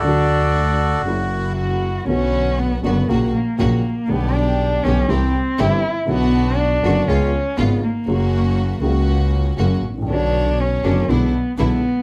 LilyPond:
<<
  \new Staff \with { instrumentName = "Bandoneon" } { \time 4/4 \key fis \phrygian \tempo 4 = 120 << { d''2 r2 | \key b \minor r1 | r1 | r1 |
r1 | r1 | } \\ { <fis' a'>2. r4 | r1 | r1 | r1 |
r1 | r1 | } >> }
  \new Staff \with { instrumentName = "String section" } { \time 4/4 \key fis \phrygian <a d' fis'>2 <ais e' fis'>2 | \key b \minor <d b fis'>4. <b d' fis'>8 <ais cis' fis'>8 r8 <ais cis' fis'>8 r8 | <b d' g'>4. <b d' g'>8 <c' e' g'>8 r8 <c' e' g'>8 r8 | <b d' fis'>4. <b d' fis'>8 <b cis' eis'>8 r8 <b cis' eis'>8 r8 |
<ais cis' fis'>4. <ais cis' fis'>4. <ais cis' fis'>8 r8 | <b cis''>4. <b cis' d'>8 <gis d' e'>8 r8 <gis d' e'>8 r8 | }
  \new Staff \with { instrumentName = "Cello" } { \time 4/4 \key fis \phrygian d'2 r4 fis'4 | \key b \minor cis'4 b8 b8 ais8 ais8 ais4 | b8 d'4 cis'8 c'4 e'8. r16 | b4 d'4 cis'4 b8 ais8~ |
ais4. r2 r8 | d'4 cis'4 b4 b4 | }
  \new Staff \with { instrumentName = "Upright piano" } { \clef bass \time 4/4 \key fis \phrygian <d, d fis a fis'>2 <fis, cis fis ais e'>2 | \key b \minor <b,, b, d fis b fis'>4. <fis,, fis, d fis b fis'>8 <ais,, ais, cis fis ais fis'>8 r8 <ais,, ais, cis fis ais fis'>8 r8 | <b,, b, d g b g'>4. <b,, b, d g b g'>8 <c, c e g c' g'>8 r8 <g,, g, e g c' g'>8 r8 | <b,, b, d fis b fis'>4. <fis,, fis, d fis b fis'>8 <cis, cis gis b eis'>8 r8 <gis,, gis, cis gis b eis'>8 r8 |
<fis, cis fis ais fis'>4. <cis, cis fis ais fis'>4. <fis, cis fis ais fis'>8 r32 gis,,32 a,,32 ais,,32 | <b,, b, d b fis' cis''>4. <fis,, fis, d b cis' fis'>8 <b,, b, d gis b e'>8 r8 <b,, b, d gis b e'>8 r8 | }
  \new Staff \with { instrumentName = "Double bass" } { \clef bass \time 4/4 \key fis \phrygian d,2 fis,,2 | \key b \minor b,,4. fis,,8 ais,,8 r8 ais,,8 r8 | b,,4. b,,8 c,8 r8 g,,8 r8 | b,,4. fis,,8 cis,8 r8 gis,,8 r8 |
fis,,4. cis,4. fis,,8 a,,8 | b,,4. fis,,8 b,,8 r8 b,,8 r8 | }
>>